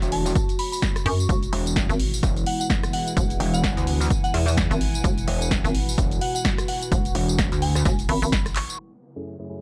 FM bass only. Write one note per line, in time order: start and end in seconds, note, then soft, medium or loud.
1.06 1.28 F#2 loud
1.29 1.51 E1 loud
1.89 2.21 G#1 loud
3.17 3.39 E1 loud
4.71 5.03 G#1 medium
5.04 5.26 E1 loud
5.64 5.96 G#1 loud
6.92 7.14 E1 loud
7.85 8.07 E1 loud
8.09 8.20 G#1 loud
8.22 8.67 G#1 loud